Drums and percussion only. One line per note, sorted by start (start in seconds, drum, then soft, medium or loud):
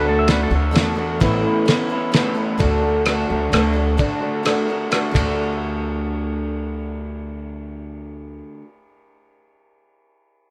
0.28 snare medium
0.28 ride medium
0.75 snare medium
0.75 ride medium
1.21 kick medium
1.21 ride medium
1.68 snare medium
1.68 ride medium
2.14 snare medium
2.14 ride medium
2.60 kick medium
2.60 ride soft
3.05 cross-stick medium
3.05 ride medium
3.53 cross-stick medium
3.53 ride medium
3.99 kick medium
3.99 ride soft
4.45 cross-stick medium
4.45 ride medium
4.92 cross-stick medium
4.92 ride medium
5.15 kick soft
5.15 ride medium